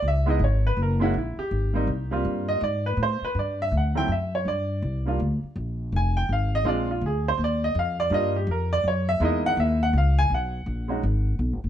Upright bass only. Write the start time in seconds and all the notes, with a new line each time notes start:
0.02 C#2
0.39 G#1
0.77 F#1
1.14 A#1
1.37 muted upright bass stroke
1.51 G#1
1.87 C2
2.25 G2
2.61 G#2
2.97 A2
3.22 muted upright bass stroke
3.35 G2
3.71 D2
4.08 F#2
4.45 G2
4.82 C2
5.20 D2
5.43 muted upright bass stroke
5.56 A#1
5.92 F1
6.29 G#1
6.64 A#1
7.01 D2
7.38 D#2
7.75 F2
8.10 G2
8.47 F2
8.84 F#2
9.20 E2
9.57 D#2
9.93 C#2
10.30 B1
10.66 A#1
11.03 G#1
11.39 B1
11.52 G#1
11.64 F#1